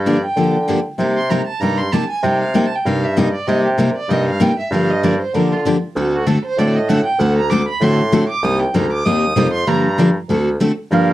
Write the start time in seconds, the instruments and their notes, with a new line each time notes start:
Already playing: bassoon G2
0.06 steel-string acoustic guitar D3 F3 A#3 D4 G4, violin D5
0.25 violin G5
0.36 bassoon D3, steel-string acoustic guitar D3 F3 A#3 D4 G4
0.68 steel-string acoustic guitar D3 F3 A#3 D4 G4
0.98 steel-string acoustic guitar C3 G3 A#3 D#4 G4, bassoon C3
1.17 violin C6
1.30 steel-string acoustic guitar C3 G3 A#3 D#4 G4, violin A#5
1.47 violin A5
1.60 bassoon G2, steel-string acoustic guitar C3 G3 A#3 D#4 G4, violin A#5
1.78 violin C6
1.92 steel-string acoustic guitar C3 G3 A#3 D#4 G4, violin A5
2.10 violin G#5
2.23 bassoon C3, steel-string acoustic guitar C3 G3 A#3 D#4 G4, violin G5
2.41 violin F5
2.54 steel-string acoustic guitar C3 G3 A#3 D#4 G4, violin G5
2.66 violin A5
2.75 violin G5
2.85 bassoon G2, steel-string acoustic guitar C3 G3 A#3 D#4 G4, violin F5
3.04 violin E5
3.16 steel-string acoustic guitar C3 G3 A#3 D#4 G4, violin D#5
3.34 violin D5
3.47 bassoon C3, steel-string acoustic guitar C3 G3 A#3 D#4 G4, violin D#5
3.65 violin G4
3.77 steel-string acoustic guitar C3 G3 A#3 D#4 G4, violin A#4
3.96 violin D5
4.09 bassoon G2, steel-string acoustic guitar C3 G3 A#3 D#4 G4, violin D#5
4.28 violin F5
4.40 steel-string acoustic guitar C3 G3 A#3 D#4 G4, violin G5
4.59 violin E5
4.71 bassoon G2, steel-string acoustic guitar D3 F3 A#3 D4 G4, violin F5
4.90 violin D#5
5.03 steel-string acoustic guitar D3 F3 A#3 D4 G4, violin D5
5.21 violin C5
5.34 bassoon D3, steel-string acoustic guitar D3 F3 A#3 D4 G4, violin A#4
5.52 violin F4
5.65 steel-string acoustic guitar D3 F3 A#3 D4 G4
5.95 bassoon D2, steel-string acoustic guitar D3 A3 C4 F#4 A4
6.15 violin F#4
6.26 steel-string acoustic guitar D3 A3 C4 F#4 A4, violin A4
6.45 violin C5
6.57 bassoon A2, steel-string acoustic guitar D3 A3 C4 F#4 A4, violin D5
6.75 violin D#5
6.88 steel-string acoustic guitar D3 A3 C4 F#4 A4, violin F#5
7.06 violin G5
7.19 bassoon D2, steel-string acoustic guitar D3 A3 C4 F#4 A4, violin F#5
7.37 violin A#5
7.50 steel-string acoustic guitar D3 A3 C4 F#4 A4, violin D6
7.68 violin B5
7.80 bassoon A2, steel-string acoustic guitar D3 A3 C4 F#4 A4, violin C6
8.12 steel-string acoustic guitar D3 A3 C4 F#4 A4
8.29 violin D6
8.43 bassoon C2, steel-string acoustic guitar C3 G3 A#3 D#4 G4, violin D#6
8.62 violin G5
8.74 bassoon D2, steel-string acoustic guitar C3 G3 A#3 D#4 G4, violin A#5
8.92 violin D6
9.05 bassoon D#2, steel-string acoustic guitar C3 G3 A#3 D#4 G4, violin D#6
9.36 bassoon F2, steel-string acoustic guitar C3 G3 A#3 D#4 G4
9.53 violin C6
9.67 bassoon G2, steel-string acoustic guitar D3 F3 A#3 D4 G4, violin A#5
9.98 steel-string acoustic guitar D3 F3 A#3 D4 G4
10.29 bassoon D2, steel-string acoustic guitar D3 A3 C4 F#4 A4
10.60 steel-string acoustic guitar D3 A3 C4 F#4 A4
10.91 bassoon G2, steel-string acoustic guitar D3 F3 A#3 D4 G4, violin A#4, accordion F5